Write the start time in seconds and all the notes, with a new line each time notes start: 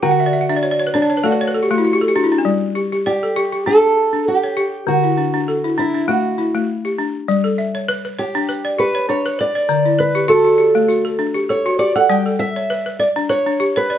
0.03 D3 F#4 G5
0.11 F#5
0.20 E5
0.26 D5
0.33 E5
0.41 F#5
0.49 D4 E5
0.56 D5
0.63 C#5
0.71 D5
0.79 C#5
0.87 B4
0.94 D4 C#5
1.02 D5
1.10 C#5
1.17 B4
1.24 A3 F#4 A4
1.32 B4
1.41 C#5
1.47 B4
1.54 A4
1.63 G4
1.71 A3 F#4
1.78 E4
1.85 F#4
1.93 G4
2.01 A4
2.08 G4
2.16 D4 F#4
2.24 E4
2.32 D4
2.38 C#4
2.45 G3
2.75 G4
2.92 G4
3.06 G4 D5
3.23 A4
3.36 G4
3.52 G4
3.66 D4 A4
4.13 D4
4.28 G4
4.44 C#5
4.57 G4
4.87 D3 F#4
5.03 E4
5.17 D4
5.34 D4
5.48 A4
5.64 E4
5.78 D4 E4
5.94 D4
6.08 A3 F#4
6.38 E4
6.55 A3
6.85 G4
6.98 D4
7.28 G3, shaker
7.44 A4
7.58 E5, shaker
7.75 C#5
7.88 B4
8.05 B4
8.18 G4 C#5, shaker
8.35 D4, shaker
8.49 B4, shaker
8.65 D5
8.79 G4 B4, shaker
8.95 C#5
9.09 D4 C#5, shaker
9.26 B4
9.39 B4 D5
9.55 D5
9.69 D3, shaker
9.85 E4
9.99 B4, shaker
10.15 G4
10.28 F#4 A4
10.45 F#4
10.58 G4, shaker
10.75 A3, shaker
10.89 F#4, shaker
11.05 A4
11.19 D4, shaker
11.34 G4
11.49 A4 C#5, shaker
11.66 F#4
11.79 G4 D5
11.96 A4 F#5
12.09 G3 G5, shaker
12.26 A4
12.39 E5, shaker
12.56 C#5
12.70 B4
12.86 B4
12.99 D5, shaker
13.16 D4, shaker
13.29 B4 C#5, shaker
13.46 D4
13.60 G4, shaker
13.76 B4 C#5
13.90 D5, shaker